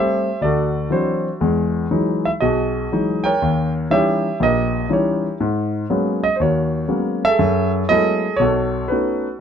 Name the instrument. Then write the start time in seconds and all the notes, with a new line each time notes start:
grand piano
Already playing: G3 A3 C4 G4 C5 E5
0.41 D2 F#4 A4 D5
0.90 E3 F#3 C4 D4 E4 F#4 C5
1.41 E2 G#3
1.91 E3 F#3 G#3 D#4
2.25 E5
2.40 B1 F#4 G#4 D#5
2.92 E3 F#3 G#3 D#4
3.24 A#4 C#5 G5
3.42 D#2
3.90 E3 G3 C#4 D#4 G4 C#5 E5
4.40 A#1 G4 A#4 D#5
4.89 E3 G3 C#4 D#4 E4 G4 C#5
5.40 G#2
5.90 F#3 G#3 A#3 B3 C#4
6.24 D#5
6.36 D#2 C5
6.41 F#4 A#4 C#5
6.88 F#3 G#3 A#3 B3 C#4
7.25 G#4 A4 E5
7.39 F#2
7.89 F#3 G#3 A3 B3 E4 G#4 A4 D#5
8.36 B1 C#5
8.41 F#4 A4
8.88 A3 B3 C#4 D#4 B4
8.93 F#4